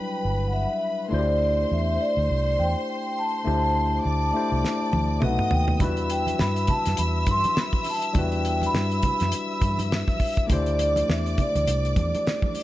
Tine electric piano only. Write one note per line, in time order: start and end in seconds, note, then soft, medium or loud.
0.00 1.13 F#3 medium
0.00 1.10 G3 medium
0.00 1.07 D4 medium
0.00 1.08 E4 medium
0.00 1.09 B4 medium
1.09 3.41 A3 medium
1.09 3.41 D4 medium
1.09 3.42 E4 medium
1.13 1.20 F#4 soft
1.13 3.43 C5 medium
1.19 3.46 G4 medium
3.45 4.32 A3 medium
3.45 4.33 D4 medium
3.45 4.34 E4 medium
3.45 4.34 G4 medium
3.45 4.35 C5 medium
4.34 5.19 A3 medium
4.34 5.22 D4 soft
4.34 5.22 E4 medium
4.34 5.23 G4 soft
4.34 5.23 C5 medium
5.20 5.80 A3 medium
5.20 5.80 B3 medium
5.20 5.30 C4 soft
5.20 5.81 F#4 medium
5.20 5.81 B4 medium
5.29 5.84 D#4 medium
5.78 8.10 G3 medium
5.78 8.11 D4 medium
5.78 8.11 E4 medium
5.78 8.12 F#4 medium
5.84 8.13 B4 medium
8.13 10.45 G3 medium
8.13 10.45 D4 medium
8.13 10.46 E4 medium
8.13 10.47 F#4 medium
8.19 10.47 B4 medium
10.47 12.63 A3 medium
10.47 12.63 D4 medium
10.47 12.63 E4 medium
10.47 12.63 G4 medium
10.52 12.63 C5 medium